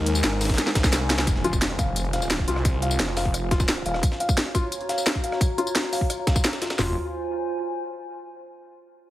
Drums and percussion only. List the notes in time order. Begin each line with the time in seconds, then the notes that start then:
0.06 closed hi-hat, ride, tambourine
0.15 tambourine
0.24 snare, closed hi-hat, ride
0.32 cross-stick
0.41 snare, closed hi-hat, open hi-hat, ride, tambourine
0.45 snare, closed hi-hat
0.49 kick, snare, closed hi-hat
0.54 snare, closed hi-hat
0.58 snare, closed hi-hat, ride, tambourine
0.67 snare
0.75 kick, snare, closed hi-hat, ride, tambourine
0.84 kick, snare, tambourine
0.93 snare, closed hi-hat, ride, tambourine
1.10 snare, closed hi-hat, ride, tambourine
1.18 snare, closed hi-hat
1.27 kick, closed hi-hat, tambourine
1.36 snare
1.44 closed hi-hat, tambourine
1.53 kick, tambourine
1.62 snare, closed hi-hat, tambourine
1.70 cross-stick
1.79 kick, closed hi-hat, tambourine
1.96 closed hi-hat, tambourine
2.05 closed hi-hat
2.13 snare, closed hi-hat, tambourine
2.22 snare, tambourine
2.30 snare, closed hi-hat, tambourine
2.39 kick, snare
2.48 closed hi-hat, tambourine
2.56 cross-stick, snare
2.65 kick, closed hi-hat, tambourine
2.82 closed hi-hat, tambourine
2.91 tambourine
2.99 snare, closed hi-hat, tambourine
3.08 cross-stick
3.17 snare, closed hi-hat, open hi-hat, tambourine
3.25 kick
3.34 cross-stick, closed hi-hat, tambourine
3.51 kick, snare, closed hi-hat, tambourine
3.60 kick, snare, tambourine
3.68 snare, closed hi-hat, tambourine
3.86 closed hi-hat, tambourine
3.94 cross-stick, snare
4.03 kick, closed hi-hat, tambourine
4.12 snare
4.20 closed hi-hat, tambourine
4.29 kick, tambourine
4.37 snare, closed hi-hat, tambourine
4.46 cross-stick
4.55 kick, closed hi-hat, tambourine
4.72 closed hi-hat, tambourine
4.81 closed hi-hat
4.89 snare, closed hi-hat, tambourine
4.98 snare, tambourine
5.06 snare, closed hi-hat, tambourine
5.15 kick, snare
5.24 closed hi-hat, tambourine
5.32 cross-stick, snare
5.41 kick, closed hi-hat, tambourine
5.58 closed hi-hat, tambourine
5.67 tambourine
5.75 snare, closed hi-hat, tambourine
5.84 cross-stick
5.93 snare, closed hi-hat, open hi-hat, tambourine
6.01 kick
6.10 cross-stick, closed hi-hat, tambourine
6.27 kick, snare, closed hi-hat, tambourine
6.36 kick, tambourine
6.44 snare, closed hi-hat, tambourine
6.53 snare, closed hi-hat
6.62 snare, closed hi-hat, tambourine
6.70 cross-stick, snare, closed hi-hat
6.79 snare, floor tom, open hi-hat